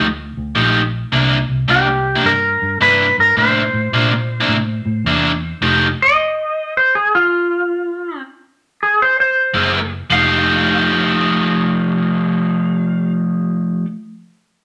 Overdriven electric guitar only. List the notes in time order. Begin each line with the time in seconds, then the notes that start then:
0.55 F3 A3 D#4 G4
1.12 C3 A#3 D4 E4
1.68 C3 A#3 D4 E4
1.88 muted overdriven electric guitar stroke
2.15 C3 A#3 D4 E4
2.81 C3 A#3 D4 E4
3.37 C3 A#3 D4 E4
3.93 C3 A#3 D4 E4
4.13 muted overdriven electric guitar stroke
4.40 C3 A#3 D4 E4
5.06 C3 A#3 D4 E4
5.62 F3 A3 D#4 G4
9.54 F#3 A#3 E4 G#4
10.10 F3 A3 D#4
10.14 G4